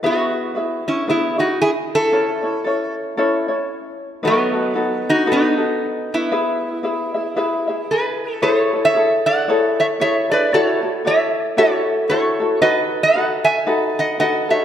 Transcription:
0.03 B3 E4 F#4 G#4 B4 E5
0.55 E4 G#4 B4 E5
0.88 C#4 E4
1.08 B3 E4 G#4 B4 E5
1.38 D#4 E4 F#4 G#4 E5
1.62 E4 G#4
1.95 E4 A4
2.12 C#4 E4 A4 C#5
2.42 C#4 E4 C#5
2.64 C#4 E4 A4 C#5
3.17 C#4 E4 A4 C#5
3.48 C#4 E4 C#5
4.23 F#3 D#4 F#4 A4 B4
4.27 B3
4.53 D#4 F#4 A4
4.74 D#4 F#4 A4 B4
5.09 D#4 F#4
5.26 D#4 F#4 A4 B4
5.32 B3 D#4
5.57 D#4 F#4 A4
6.14 B3 E4
6.32 E4 G#4 B4 E5
6.83 E4 G#4 B4 E5
7.14 E4 G#4 E5
7.36 E4 G#4 B4 E5
7.67 E4 G#4 E5
7.91 G#4 B4
8.42 E4 G#4 A4 C5 C#5
8.60 C#5
8.73 E4 G#4 A4
8.85 C#5 E5
8.95 E4 G#4 A4 C#5
9.26 D5 F#5
9.48 E4 G#4 A4 C#5
9.80 C#5 E5
10.00 E4 G#4 A4 C#5 E5
10.30 E4 G#4 A4 B4 D5
10.53 E4 F#4 A4 C#5 D5
10.65 C#5
10.83 E4 F#4 A4
11.05 E4 F#4 A4 C#5 E5
11.57 E4 F#4 A4 C#5
12.09 E4 F#4 A4 C#5
12.40 E4 F#4 A4
12.62 D#4 F#4 A4 B4 D#5
13.03 D#5 F#5
13.15 D#4 F#4 A4 B4
13.44 E5 G#5
13.67 D#4 F#4 A4 B4
13.99 D#5 F#5
14.19 D#4 F#4 A4 B4 D#5 F#5
14.49 D#4 F#4 A4 C#5 E5

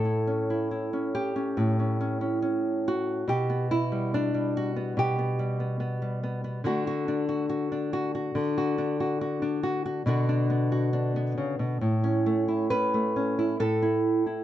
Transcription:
Already playing: A2 A4
0.05 E4
0.27 C#4
0.50 E4
0.71 E4
0.93 C#4
1.15 G4
1.36 C#4
1.57 A2
1.79 C#4
2.01 C#4
2.21 C#4
2.42 C#4
2.88 F#4
3.28 B2 G4
3.50 B3
3.71 E4
3.92 G3
4.14 D4
4.34 G3
4.57 F#4
4.76 B3
4.97 B2 G4
5.19 B3
5.39 G3
5.60 B3
5.80 B3
6.02 G3
6.23 B3
6.44 B3
6.64 D3 A3 D4 F#4
6.87 F#4
7.08 D4
7.29 F#4
7.49 F#4
7.72 D4
7.93 F#4
8.15 F#4
8.35 D3
8.58 F#4
8.78 D4
9.00 F#4
9.21 F#4
9.42 D4
9.63 F#4
9.86 F#4
10.06 B2 D3 B3 D4 F#4
10.29 D4
10.50 B3
10.72 F#4
10.93 D4
11.16 B3
11.38 C#3
11.59 B2
11.81 A2
12.04 C#4
12.26 A3
12.48 E4
12.70 C#4 B4
12.94 A3
13.16 C#4
13.39 E4
13.60 A2 A4
13.82 E4
14.26 E4

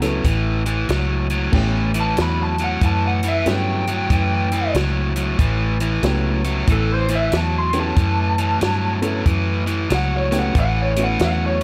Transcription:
Already playing: C#2 G4
0.01 A2 F#3 B3 C#4 E4 A4, snare, closed hi-hat
0.24 A1 A2 E3, kick, closed hi-hat
0.66 A2 E3, closed hi-hat
0.89 C#2 A2 F#3, snare, closed hi-hat
1.30 A2 F#3, closed hi-hat
1.52 A1 A2 E3 A3 B3 C#4 E4 G4, kick, crash
1.94 A2 E3, closed hi-hat
2.01 A5
2.17 E2 A2 F#3, snare, closed hi-hat
2.22 B5
2.43 A5
2.58 A2 F#3, closed hi-hat
2.64 F#5
2.81 F#2 A2 E3, kick, closed hi-hat
2.86 A5
3.07 F#5
3.23 A2 E3, closed hi-hat
3.28 E5
3.46 G2 A2 F#3 A3 B3 C#4 E4 G4, snare, closed hi-hat
3.50 G5
3.87 A2 F#3, closed hi-hat
4.10 F#2 A2 E3, kick, closed hi-hat
4.52 A2 E3, closed hi-hat
4.74 C#2 A2 F#3, snare, closed hi-hat
5.16 A2 F#3, closed hi-hat
5.39 A1 A2 E3, kick, closed hi-hat
5.80 A2 E3, closed hi-hat
6.03 C#2 A2 F#3 A3 B3 C#4 E4 G4, snare, closed hi-hat
6.44 A2 F#3, closed hi-hat
6.67 A1 A2 E3, kick, closed hi-hat
6.72 A4
6.94 C5
7.08 A2 E3, closed hi-hat
7.15 E5
7.32 E2 A2 F#3, snare, closed hi-hat
7.37 A5
7.58 C6
7.73 A2 F#3 A3 B3 C#4 E4 G4, closed hi-hat
7.80 A5
7.96 F#2 A2 E3, kick, closed hi-hat
8.38 A2 E3, closed hi-hat
8.61 G2 A2 F#3, snare, closed hi-hat
9.02 A2 F#3 A3 B3 C#4 E4 A4, closed hi-hat
9.26 F#2 A2 E3, kick, closed hi-hat
9.66 A2 E3, closed hi-hat
9.90 C#2 A2 F#3, snare, closed hi-hat
9.94 F#5
10.17 C#5
10.31 A2 F#3 A3 B3 C#4 E4 G4, snare, closed hi-hat
10.39 F#5
10.55 A1 A2 E3, kick, closed hi-hat
10.60 F#5
10.82 C#5
10.96 A2 E3 A3 B3 C#4 E4 F#4, closed hi-hat
11.04 F#5
11.19 E2 A2 F#3, snare, closed hi-hat
11.24 F#5
11.46 C#5

